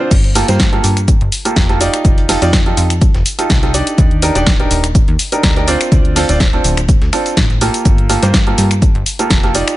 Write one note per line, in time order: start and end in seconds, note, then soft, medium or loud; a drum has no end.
0.00 0.10 C4 medium
0.00 0.10 D4 medium
0.00 0.10 F4 medium
0.00 0.10 C5 medium
0.11 0.44 G1 loud
0.11 kick loud
0.11 closed hi-hat medium
0.11 crash loud
0.11 cabasa soft
0.11 shaker medium
0.24 closed hi-hat soft
0.35 0.46 A#3 medium
0.35 0.46 F4 medium
0.35 0.46 G4 medium
0.35 0.46 A4 loud
0.35 open hi-hat loud
0.35 cabasa medium
0.35 shaker medium
0.48 0.80 G2 medium
0.48 0.63 A#3 medium
0.48 0.63 F4 medium
0.48 0.63 G4 medium
0.48 0.63 C5 loud
0.48 snare medium
0.48 closed hi-hat medium
0.48 cabasa soft
0.60 kick loud
0.60 snare loud
0.60 closed hi-hat medium
0.60 cabasa soft
0.60 shaker medium
0.72 0.96 A#3 medium
0.72 0.96 F4 medium
0.72 0.96 G4 medium
0.72 0.96 A4 medium
0.72 closed hi-hat soft
0.84 1.16 G2 medium
0.84 open hi-hat medium
0.84 cabasa medium
0.84 shaker medium
0.97 finger snap medium
0.97 closed hi-hat medium
0.97 cabasa soft
1.08 kick loud
1.08 closed hi-hat medium
1.08 cabasa soft
1.08 shaker medium
1.21 1.30 G1 medium
1.21 closed hi-hat soft
1.32 open hi-hat loud
1.32 cabasa medium
1.32 shaker medium
1.45 1.65 A#3 medium
1.45 1.65 F4 medium
1.45 1.65 G4 medium
1.45 1.65 A4 medium
1.45 closed hi-hat medium
1.45 cabasa soft
1.56 1.89 F1 medium
1.56 kick loud
1.56 snare loud
1.56 closed hi-hat medium
1.56 cabasa soft
1.56 shaker medium
1.69 1.78 A#3 medium
1.69 1.78 F4 medium
1.69 1.78 G4 medium
1.69 1.78 A4 medium
1.69 snare soft
1.69 closed hi-hat soft
1.80 2.26 D#4 medium
1.80 2.26 F4 medium
1.80 2.26 G4 medium
1.80 2.26 D5 loud
1.80 open hi-hat medium
1.80 cabasa medium
1.80 shaker medium
1.94 finger snap medium
1.94 closed hi-hat medium
1.94 cabasa soft
2.05 2.37 F1 loud
2.05 kick loud
2.05 closed hi-hat medium
2.05 cabasa soft
2.05 shaker medium
2.18 closed hi-hat soft
2.29 2.40 D#4 medium
2.29 2.40 F4 medium
2.29 2.40 G4 medium
2.29 2.40 A4 loud
2.29 snare soft
2.29 open hi-hat loud
2.29 open hi-hat medium
2.29 cabasa medium
2.42 2.73 F2 medium
2.42 2.56 D#4 medium
2.42 2.56 F4 medium
2.42 2.56 G4 medium
2.42 2.56 D5 loud
2.42 closed hi-hat medium
2.42 cabasa soft
2.53 kick loud
2.53 snare loud
2.53 closed hi-hat medium
2.53 cabasa soft
2.53 shaker medium
2.66 2.90 D#4 medium
2.66 2.90 F4 medium
2.66 2.90 G4 medium
2.66 2.90 A4 medium
2.66 closed hi-hat soft
2.77 3.10 F2 medium
2.77 open hi-hat loud
2.77 cabasa medium
2.77 shaker medium
2.90 finger snap medium
2.90 closed hi-hat medium
2.90 cabasa soft
3.01 kick loud
3.01 closed hi-hat medium
3.01 cabasa soft
3.01 shaker medium
3.14 3.23 F1 medium
3.14 snare medium
3.14 closed hi-hat soft
3.26 open hi-hat loud
3.26 cabasa medium
3.26 shaker medium
3.38 3.59 D#4 medium
3.38 3.59 F4 medium
3.38 3.59 G4 medium
3.38 3.59 A4 medium
3.38 closed hi-hat medium
3.38 closed hi-hat soft
3.38 cabasa soft
3.50 3.82 C2 medium
3.50 kick loud
3.50 snare loud
3.50 closed hi-hat medium
3.50 cabasa soft
3.50 shaker medium
3.63 3.71 D#4 medium
3.63 3.71 F4 medium
3.63 3.71 G4 medium
3.63 3.71 A4 medium
3.63 snare soft
3.63 closed hi-hat soft
3.74 4.20 D4 medium
3.74 4.20 D#4 medium
3.74 4.20 G4 medium
3.74 4.20 D5 loud
3.74 open hi-hat loud
3.74 cabasa medium
3.74 shaker medium
3.87 closed hi-hat medium
3.87 cabasa soft
3.98 4.31 D#2 loud
3.98 kick loud
3.98 closed hi-hat medium
3.98 cabasa soft
3.98 shaker medium
4.11 closed hi-hat soft
4.22 4.33 D4 medium
4.22 4.33 D#4 medium
4.22 4.33 G4 medium
4.22 4.33 A#4 loud
4.22 open hi-hat loud
4.22 cabasa medium
4.22 shaker medium
4.35 4.67 D#1 medium
4.35 4.50 D4 medium
4.35 4.50 D#4 medium
4.35 4.50 G4 medium
4.35 4.50 D5 loud
4.35 snare medium
4.35 closed hi-hat soft
4.35 cabasa soft
4.47 kick loud
4.47 snare loud
4.47 closed hi-hat medium
4.47 cabasa soft
4.47 shaker medium
4.60 4.83 D4 medium
4.60 4.83 D#4 medium
4.60 4.83 G4 medium
4.60 4.83 A#4 medium
4.60 closed hi-hat soft
4.71 5.03 D#1 medium
4.71 open hi-hat loud
4.71 cabasa medium
4.71 shaker medium
4.84 finger snap medium
4.84 closed hi-hat medium
4.84 cabasa soft
4.95 kick loud
4.95 closed hi-hat medium
4.95 cabasa soft
4.95 shaker medium
5.08 5.17 D#2 medium
5.08 closed hi-hat soft
5.19 open hi-hat loud
5.19 cabasa medium
5.19 shaker medium
5.32 5.53 D4 medium
5.32 5.53 D#4 medium
5.32 5.53 G4 medium
5.32 5.53 A#4 medium
5.32 closed hi-hat medium
5.32 cabasa soft
5.43 5.76 D2 medium
5.43 kick loud
5.43 snare loud
5.43 closed hi-hat medium
5.43 cabasa soft
5.43 shaker medium
5.56 5.65 D4 medium
5.56 5.65 D#4 medium
5.56 5.65 G4 medium
5.56 5.65 A#4 medium
5.56 snare soft
5.56 closed hi-hat soft
5.68 6.13 C4 medium
5.68 6.13 D4 medium
5.68 6.13 F4 medium
5.68 6.13 D5 loud
5.68 snare loud
5.68 open hi-hat loud
5.68 cabasa medium
5.68 shaker medium
5.81 finger snap medium
5.81 closed hi-hat medium
5.81 cabasa soft
5.92 6.24 D2 loud
5.92 kick loud
5.92 closed hi-hat medium
5.92 cabasa soft
5.92 shaker medium
6.05 closed hi-hat soft
6.16 6.27 C4 loud
6.16 6.27 D4 medium
6.16 6.27 F4 medium
6.16 6.27 A4 loud
6.16 snare soft
6.16 open hi-hat medium
6.16 open hi-hat loud
6.16 cabasa medium
6.29 6.60 D1 medium
6.29 6.43 C4 medium
6.29 6.43 D4 medium
6.29 6.43 F4 medium
6.29 6.43 D5 loud
6.29 closed hi-hat soft
6.29 cabasa soft
6.40 kick loud
6.40 snare loud
6.40 closed hi-hat medium
6.40 cabasa soft
6.40 shaker medium
6.53 6.77 C4 medium
6.53 6.77 D4 medium
6.53 6.77 F4 medium
6.53 6.77 A4 medium
6.53 closed hi-hat soft
6.64 6.97 D1 loud
6.64 open hi-hat loud
6.64 cabasa medium
6.64 shaker medium
6.77 finger snap medium
6.77 closed hi-hat medium
6.77 cabasa soft
6.89 kick loud
6.89 closed hi-hat medium
6.89 cabasa soft
6.89 shaker medium
7.02 7.10 D2 medium
7.02 snare medium
7.02 closed hi-hat soft
7.13 7.37 C4 medium
7.13 7.37 D4 medium
7.13 7.37 F4 medium
7.13 7.37 A4 loud
7.13 finger snap medium
7.13 open hi-hat loud
7.13 cabasa medium
7.13 shaker medium
7.26 closed hi-hat medium
7.26 closed hi-hat soft
7.26 cabasa soft
7.37 7.70 A1 medium
7.37 kick loud
7.37 snare loud
7.37 closed hi-hat medium
7.37 cabasa soft
7.37 shaker medium
7.50 snare soft
7.50 closed hi-hat soft
7.61 8.07 A#3 medium
7.61 8.07 F4 medium
7.61 8.07 G4 medium
7.61 8.07 A4 medium
7.61 open hi-hat loud
7.61 cabasa medium
7.61 shaker medium
7.74 closed hi-hat soft
7.74 cabasa soft
7.85 8.18 G1 loud
7.85 kick loud
7.85 closed hi-hat medium
7.85 cabasa soft
7.85 shaker medium
7.98 closed hi-hat soft
8.09 8.21 A#3 medium
8.09 8.21 F4 medium
8.09 8.21 G4 medium
8.09 8.21 A4 loud
8.09 open hi-hat loud
8.09 cabasa medium
8.09 shaker medium
8.23 8.54 G2 medium
8.23 8.37 A#3 medium
8.23 8.37 F4 medium
8.23 8.37 G4 medium
8.23 8.37 C5 loud
8.23 snare medium
8.23 closed hi-hat soft
8.23 cabasa soft
8.34 kick loud
8.34 snare loud
8.34 closed hi-hat medium
8.34 cabasa soft
8.34 shaker medium
8.47 8.70 A#3 medium
8.47 8.71 F4 medium
8.47 8.70 G4 medium
8.47 8.71 A4 medium
8.47 closed hi-hat soft
8.58 8.90 G2 medium
8.58 open hi-hat medium
8.58 cabasa medium
8.58 shaker medium
8.71 finger snap medium
8.71 closed hi-hat soft
8.71 cabasa soft
8.82 kick loud
8.82 closed hi-hat medium
8.82 cabasa soft
8.82 shaker medium
8.95 9.04 G1 medium
8.95 closed hi-hat soft
9.06 open hi-hat loud
9.06 cabasa medium
9.06 shaker medium
9.19 9.40 A#3 medium
9.19 9.40 F4 medium
9.19 9.40 G4 medium
9.19 9.40 A4 medium
9.19 closed hi-hat medium
9.19 cabasa soft
9.30 9.63 F1 medium
9.30 kick loud
9.30 snare loud
9.30 closed hi-hat soft
9.30 cabasa soft
9.30 shaker medium
9.43 9.52 A#3 medium
9.43 9.52 F4 medium
9.43 9.52 G4 medium
9.43 9.52 A4 medium
9.43 snare soft
9.43 closed hi-hat soft
9.55 9.77 D#4 medium
9.55 9.77 F4 medium
9.55 9.77 G4 medium
9.55 9.77 D5 loud
9.55 open hi-hat medium
9.55 cabasa medium
9.55 shaker medium
9.68 finger snap medium
9.68 closed hi-hat medium
9.68 cabasa soft